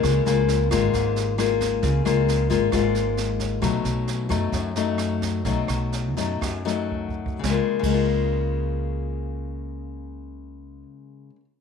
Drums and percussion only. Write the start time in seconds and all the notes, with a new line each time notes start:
0.03 kick, cross-stick, snare
0.26 snare
0.48 snare
0.71 kick, cross-stick, snare
0.94 kick, snare
1.16 snare
1.39 cross-stick, snare
1.61 kick, snare
1.83 kick, snare
2.06 cross-stick, snare
2.28 snare
2.50 kick, snare
2.72 kick, cross-stick, snare
2.95 snare
3.17 snare
3.40 kick, snare
3.62 kick, cross-stick, snare
3.85 snare
4.08 snare
4.30 kick, cross-stick, snare
4.52 kick, snare
4.76 snare
4.98 cross-stick, snare
5.21 kick, snare
5.45 kick, snare
5.68 cross-stick, snare
5.92 snare
6.17 kick, snare
6.42 kick, cross-stick, snare
6.67 snare
6.92 kick
7.09 kick
7.26 kick
7.44 kick, snare
7.83 kick, crash